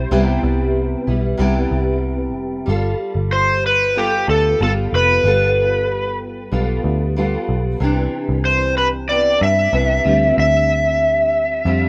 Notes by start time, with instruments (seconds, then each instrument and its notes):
Already playing: nylon-string guitar G3 C4 E4
0.11 picked electric bass C2, nylon-string guitar C3 G3 B3 E4
0.43 picked electric bass C2
1.07 picked electric bass B1, nylon-string guitar G3 B3 E4
1.38 picked electric bass C2, nylon-string guitar C3 G3 B3 E4
1.71 picked electric bass C2
2.36 picked electric bass F1
2.66 picked electric bass G1, nylon-string guitar G3 F4 A4
3.15 picked electric bass G1
3.33 electric slide guitar C5
3.66 electric slide guitar B4
3.95 nylon-string guitar G3 B3 F4 A4, electric slide guitar G4
4.28 picked electric bass D2, electric slide guitar A4
4.60 picked electric bass G1, nylon-string guitar G3 B3 F4 A4, electric slide guitar A4
4.93 picked electric bass F1, electric slide guitar B4
5.24 picked electric bass G1, nylon-string guitar G3 B3 F4 A4
6.52 picked electric bass B1, nylon-string guitar G3 B3 F4 A4
6.84 picked electric bass D2
7.16 nylon-string guitar G3 B3 F4 A4
7.49 picked electric bass B1
7.80 picked electric bass C2, nylon-string guitar C3 E3 D4
8.29 picked electric bass C2
8.45 electric slide guitar C5
8.78 electric slide guitar B4
9.09 nylon-string guitar C3 E3 B3 D4, electric slide guitar D5
9.41 picked electric bass G2, electric slide guitar E5
9.72 picked electric bass C2, nylon-string guitar C3 E3 B3 D4
10.05 picked electric bass D2, nylon-string guitar D3 G3 C4 F4
10.38 picked electric bass D2, electric slide guitar E5
11.65 picked electric bass F2, nylon-string guitar D3 G3 C4 F4